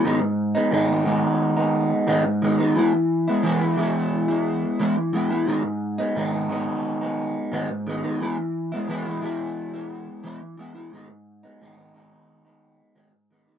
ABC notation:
X:1
M:4/4
L:1/16
Q:1/4=88
K:G#phr
V:1 name="Clean electric guitar"
[G,,D,G,B,D]3 [G,B,D] [G,,D,G,B,D] [G,B,D] [D,G,B,D]3 [G,B,D]3 [G,,D,G,B,D]2 [D,G,B,D] [G,B,D] | [E,G,B,E]3 [G,B,E] [E,G,B,E] [G,B,E] [E,G,B,E]3 [G,B,E]3 [E,G,B,E]2 [E,G,B,E] [G,B,E] | [G,,D,G,B,D]3 [G,B,D] [G,,D,G,B,D] [G,B,D] [D,G,B,D]3 [G,B,D]3 [G,,D,G,B,D]2 [D,G,B,D] [G,B,D] | [E,G,B,E]3 [G,B,E] [E,G,B,E] [G,B,E] [E,G,B,E]3 [G,B,E]3 [E,G,B,E]2 [E,G,B,E] [G,B,E] |
[G,,D,G,B,D]3 [G,B,D] [G,,D,G,B,D] [G,B,D] [D,G,B,D]3 [G,B,D]3 [G,,D,G,B,D]2 [D,G,B,D] [G,B,D] |]